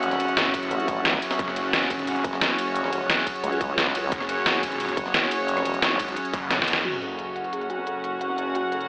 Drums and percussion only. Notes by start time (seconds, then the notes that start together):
0.03 closed hi-hat
0.11 snare, closed hi-hat
0.20 closed hi-hat, ride
0.28 closed hi-hat
0.37 snare, closed hi-hat
0.54 kick, closed hi-hat, ride
0.63 closed hi-hat
0.71 closed hi-hat
0.80 closed hi-hat
0.88 kick, closed hi-hat, ride
1.05 snare, closed hi-hat
1.14 kick, cross-stick, snare
1.22 closed hi-hat, ride
1.31 snare, closed hi-hat
1.39 kick, closed hi-hat
1.48 cross-stick, snare
1.56 closed hi-hat, ride
1.73 snare, closed hi-hat
1.82 closed hi-hat
1.90 kick, closed hi-hat, ride
1.99 closed hi-hat
2.07 closed hi-hat, open hi-hat
2.16 closed hi-hat
2.24 kick, closed hi-hat, ride
2.33 snare
2.41 snare, closed hi-hat
2.50 cross-stick
2.59 closed hi-hat, ride
2.76 closed hi-hat
2.84 snare
2.93 closed hi-hat, ride
3.10 snare, closed hi-hat
3.27 kick, closed hi-hat, ride
3.35 closed hi-hat
3.44 closed hi-hat
3.52 closed hi-hat
3.61 kick, closed hi-hat, ride
3.78 snare, closed hi-hat
3.86 kick, cross-stick, snare
3.95 closed hi-hat, ride
4.12 kick, closed hi-hat
4.20 cross-stick, snare
4.29 closed hi-hat, ride
4.46 snare, closed hi-hat
4.55 closed hi-hat
4.63 kick, closed hi-hat, ride
4.72 closed hi-hat
4.80 closed hi-hat, open hi-hat
4.89 closed hi-hat
4.97 kick, closed hi-hat, ride
5.06 snare
5.14 snare, closed hi-hat
5.23 cross-stick
5.31 closed hi-hat, ride
5.48 closed hi-hat
5.57 cross-stick, snare, closed hi-hat
5.65 closed hi-hat, ride
5.74 closed hi-hat
5.82 snare, closed hi-hat
5.99 kick, closed hi-hat, ride
6.08 closed hi-hat
6.16 closed hi-hat
6.25 closed hi-hat
6.33 kick, closed hi-hat, ride
6.51 snare, closed hi-hat
6.59 kick, snare
6.68 closed hi-hat, ride
6.73 snare
6.85 closed hi-hat, crash
6.93 snare
7.02 closed hi-hat
7.19 closed hi-hat
7.36 closed hi-hat
7.44 closed hi-hat
7.53 closed hi-hat, open hi-hat
7.61 closed hi-hat
7.70 closed hi-hat
7.78 snare
7.87 closed hi-hat
8.04 closed hi-hat
8.21 closed hi-hat
8.30 snare
8.38 closed hi-hat
8.55 closed hi-hat
8.72 closed hi-hat
8.81 closed hi-hat